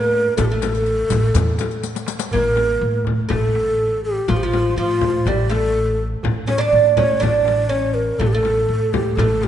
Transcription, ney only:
0, 0, Header, 1, 2, 480
1, 0, Start_track
1, 0, Tempo, 489396
1, 364, Time_signature, 4, 2, 24, 8
1, 9296, End_track
2, 0, Start_track
2, 0, Title_t, "Ney"
2, 0, Program_c, 0, 77
2, 0, Note_on_c, 0, 70, 90
2, 359, Note_off_c, 0, 70, 0
2, 365, Note_on_c, 0, 69, 65
2, 438, Note_on_c, 0, 67, 55
2, 453, Note_off_c, 0, 69, 0
2, 498, Note_on_c, 0, 69, 77
2, 513, Note_off_c, 0, 67, 0
2, 1802, Note_off_c, 0, 69, 0
2, 2280, Note_on_c, 0, 70, 93
2, 2962, Note_off_c, 0, 70, 0
2, 3259, Note_on_c, 0, 69, 92
2, 3931, Note_off_c, 0, 69, 0
2, 3964, Note_on_c, 0, 67, 83
2, 4212, Note_on_c, 0, 65, 73
2, 4227, Note_off_c, 0, 67, 0
2, 4281, Note_on_c, 0, 67, 61
2, 4296, Note_off_c, 0, 65, 0
2, 4357, Note_on_c, 0, 65, 78
2, 4371, Note_off_c, 0, 67, 0
2, 4676, Note_off_c, 0, 65, 0
2, 4682, Note_on_c, 0, 65, 85
2, 5176, Note_on_c, 0, 67, 78
2, 5191, Note_off_c, 0, 65, 0
2, 5410, Note_on_c, 0, 69, 86
2, 5425, Note_off_c, 0, 67, 0
2, 5886, Note_off_c, 0, 69, 0
2, 6358, Note_on_c, 0, 73, 86
2, 6486, Note_on_c, 0, 74, 89
2, 6501, Note_off_c, 0, 73, 0
2, 6853, Note_on_c, 0, 73, 89
2, 6868, Note_off_c, 0, 74, 0
2, 7086, Note_on_c, 0, 74, 85
2, 7101, Note_off_c, 0, 73, 0
2, 7551, Note_on_c, 0, 73, 90
2, 7566, Note_off_c, 0, 74, 0
2, 7789, Note_on_c, 0, 70, 79
2, 7804, Note_off_c, 0, 73, 0
2, 8039, Note_on_c, 0, 69, 80
2, 8053, Note_off_c, 0, 70, 0
2, 8111, Note_on_c, 0, 67, 67
2, 8126, Note_off_c, 0, 69, 0
2, 8170, Note_on_c, 0, 69, 88
2, 8185, Note_off_c, 0, 67, 0
2, 8764, Note_on_c, 0, 67, 76
2, 8778, Note_off_c, 0, 69, 0
2, 8984, Note_on_c, 0, 69, 76
2, 8999, Note_off_c, 0, 67, 0
2, 9250, Note_on_c, 0, 67, 70
2, 9265, Note_off_c, 0, 69, 0
2, 9296, Note_off_c, 0, 67, 0
2, 9296, End_track
0, 0, End_of_file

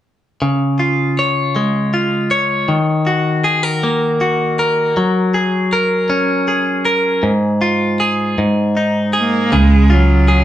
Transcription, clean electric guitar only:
0, 0, Header, 1, 2, 480
1, 0, Start_track
1, 0, Key_signature, -5, "major"
1, 0, Tempo, 758725
1, 264, Time_signature, 6, 3, 24, 8
1, 6606, End_track
2, 0, Start_track
2, 0, Title_t, "Clean electric guitar"
2, 0, Program_c, 0, 27
2, 264, Note_on_c, 0, 49, 51
2, 503, Note_on_c, 0, 65, 40
2, 752, Note_on_c, 0, 73, 46
2, 987, Note_on_c, 0, 56, 47
2, 1217, Note_off_c, 0, 65, 0
2, 1225, Note_on_c, 0, 65, 39
2, 1459, Note_off_c, 0, 73, 0
2, 1461, Note_on_c, 0, 73, 53
2, 1696, Note_off_c, 0, 49, 0
2, 1699, Note_on_c, 0, 51, 56
2, 1752, Note_off_c, 0, 65, 0
2, 1753, Note_off_c, 0, 56, 0
2, 1940, Note_on_c, 0, 66, 46
2, 2175, Note_off_c, 0, 73, 0
2, 2178, Note_on_c, 0, 68, 55
2, 2297, Note_off_c, 0, 68, 0
2, 2297, Note_on_c, 0, 70, 43
2, 2426, Note_on_c, 0, 58, 43
2, 2661, Note_off_c, 0, 66, 0
2, 2663, Note_on_c, 0, 66, 42
2, 2897, Note_off_c, 0, 70, 0
2, 2904, Note_on_c, 0, 70, 51
2, 3141, Note_off_c, 0, 58, 0
2, 3142, Note_off_c, 0, 51, 0
2, 3143, Note_on_c, 0, 54, 60
2, 3377, Note_off_c, 0, 66, 0
2, 3380, Note_on_c, 0, 68, 46
2, 3399, Note_off_c, 0, 70, 0
2, 3623, Note_on_c, 0, 70, 53
2, 3857, Note_on_c, 0, 61, 50
2, 4097, Note_off_c, 0, 68, 0
2, 4099, Note_on_c, 0, 68, 50
2, 4328, Note_off_c, 0, 70, 0
2, 4336, Note_on_c, 0, 70, 50
2, 4574, Note_on_c, 0, 44, 65
2, 4584, Note_off_c, 0, 54, 0
2, 4628, Note_off_c, 0, 70, 0
2, 4629, Note_off_c, 0, 61, 0
2, 4815, Note_off_c, 0, 68, 0
2, 4817, Note_on_c, 0, 65, 54
2, 5061, Note_on_c, 0, 68, 53
2, 5295, Note_off_c, 0, 44, 0
2, 5303, Note_on_c, 0, 44, 61
2, 5349, Note_off_c, 0, 65, 0
2, 5546, Note_on_c, 0, 63, 49
2, 5775, Note_off_c, 0, 68, 0
2, 5778, Note_on_c, 0, 68, 51
2, 6023, Note_on_c, 0, 49, 61
2, 6024, Note_off_c, 0, 68, 0
2, 6027, Note_on_c, 0, 68, 43
2, 6072, Note_off_c, 0, 44, 0
2, 6073, Note_off_c, 0, 63, 0
2, 6262, Note_on_c, 0, 65, 50
2, 6498, Note_off_c, 0, 68, 0
2, 6505, Note_on_c, 0, 68, 52
2, 6606, Note_off_c, 0, 49, 0
2, 6606, Note_off_c, 0, 65, 0
2, 6606, Note_off_c, 0, 68, 0
2, 6606, End_track
0, 0, End_of_file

